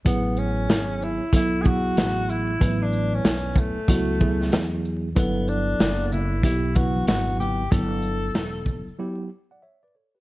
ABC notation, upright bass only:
X:1
M:4/4
L:1/16
Q:"Swing 16ths" 1/4=94
K:A
V:1 name="Upright bass" clef=bass
A,,,4 G,,,3 z B,,,4 A,,,4 | A,,,4 B,,,3 z C,,4 E,,4 | =G,,,4 F,,,4 B,,,4 ^G,,,4 | =G,,,4 E,,,3 z8 z |]